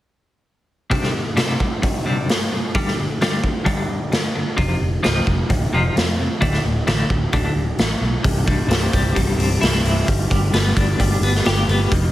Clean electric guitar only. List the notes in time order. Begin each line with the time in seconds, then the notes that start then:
0.90 C2 G2 C3
1.13 C2 G2
1.36 C2 G2 C3
1.60 C2 G2
1.82 C2 G2
2.05 C2 G2 C3
2.29 C2 G2
2.52 C2 G2
2.75 G2 D3 G3
2.99 G2 D3
3.21 G2 D3 G3
3.43 G2 D3
3.64 G2 D3 G3
3.88 G2 D3
4.12 G2 D3
4.35 G2 D3
4.57 F2 C3 F3
4.80 F2
5.03 F2 C3 F3
5.27 F2 C3
5.49 F2 C3
5.73 F2 C3 F3
5.96 F2 C3
6.19 F2 C3
6.41 D2 A2 D3
6.64 D2 A2
6.87 D2 A2 D3
7.11 A2
7.33 D2 A2 D3
7.56 D2 A2
7.79 D2 A2
8.01 D2 A2
8.23 C2
8.46 G2
8.69 C3
8.93 G3
9.15 G2
9.38 C3
9.61 E4
9.84 C3
10.07 G2
10.30 G3
10.54 B3
10.77 D4
11.00 G3
11.23 B3
11.46 G4
11.69 B3
11.92 F2